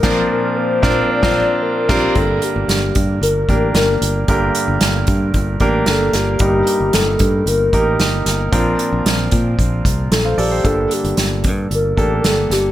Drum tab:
CC |x-------------x-|----------------|----------------|----------------|
HH |----------------|x-x-x-x-x-x-x-x-|x-x-x-x-x-x-x-x-|x-x-x-x-x-x-x-x-|
SD |o-----o--o----o-|----o-------o---|----o-------o-o-|----o-------o-o-|
BD |o-----o--o----o-|o-----o---o-----|o-----o-o-o-----|o-----o---o-----|

CC |----------------|----------------|
HH |x-x-x-x-x-x-x-o-|x-xxx-x-x-x-x-x-|
SD |----o-------o---|----o-------o-o-|
BD |o-----o-o-o-----|o-----o---o-----|